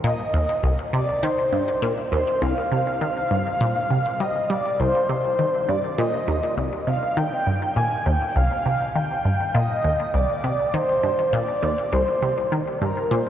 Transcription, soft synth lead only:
0.04 D#5
0.93 D5
1.23 C5
2.12 C5
2.42 F5
4.20 D#5
4.50 D5
4.79 C5
5.69 D5
5.99 D#5
6.88 F5
7.17 G5
7.76 G#5
8.06 G5
8.29 G5
8.36 F5
8.66 F5
8.95 G5
9.54 D#5
10.14 D5
10.73 C5
11.33 D5
11.92 C5
12.82 A#4
13.11 C5

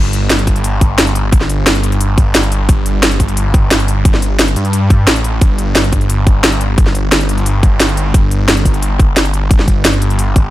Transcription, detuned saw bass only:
Already playing: G1
1.32 G1
2.18 G1
2.69 G1
4.05 G1
4.56 G2
5.07 A1
5.41 G1
6.78 G1
7.63 G1
8.14 G1
9.51 G1
10.36 G1

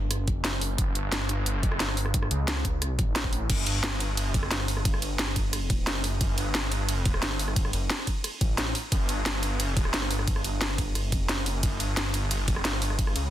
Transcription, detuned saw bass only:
Already playing: G1
0.19 F#1
0.44 F#1
0.78 F#1
0.95 G1
1.54 F#1
1.80 G1
2.31 C#2
3.16 A1
3.50 F#1
3.67 G1
4.26 F#1
4.51 G1
5.02 G1
5.87 F#1
6.21 F#1
6.38 G1
7.22 G1
7.73 F#1
8.41 A1
8.58 A1
8.92 F#1
9.09 G1
9.94 G1
10.45 G1
11.04 F#1
11.29 F#1
11.63 F#1
11.80 G1
12.39 F#1
12.65 G1
13.16 C#2

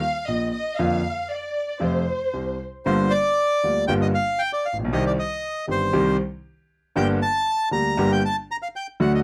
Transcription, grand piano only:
0.28 A#1 A#2
0.79 F2 D3 F3 A#3 F4
1.80 F2 C3 F3 A3 F4
2.34 C2 C3
2.86 G1 G2 D3 G3 A#3 F4
3.64 D2 D3 G3 A#3 F4
3.88 G1 G2 D3 G3 A#3 F4
4.73 A1
4.79 A#1
4.84 B1
4.92 C2 C3 D#3 G3 C4 G4
5.67 G1 G2 D#3 G3 C4 G4
5.93 C2 C3 D#3 G3 C4 G4
6.96 G1 G2 D3 G3 A#3 G4
7.71 D2 D3 G3 A#3 G4
7.97 G1 G2 D3 G3 A#3 G4
9.00 D2 D3 F#3 A3 F#4

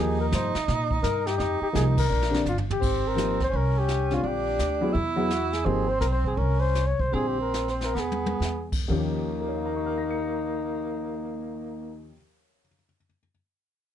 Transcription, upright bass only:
Already playing: D#2
0.32 G2
0.55 muted upright bass stroke
0.68 A#2
1.03 G2
1.40 F2
1.61 muted upright bass stroke
1.75 C2
2.10 A#1
2.46 G1
2.82 G#1
3.53 C2
4.23 A#1
4.59 D2
4.95 E2
5.66 G#1
6.01 B1
6.37 C2
6.99 C2
7.13 A#1
7.95 E2
8.40 E2
8.90 D#2

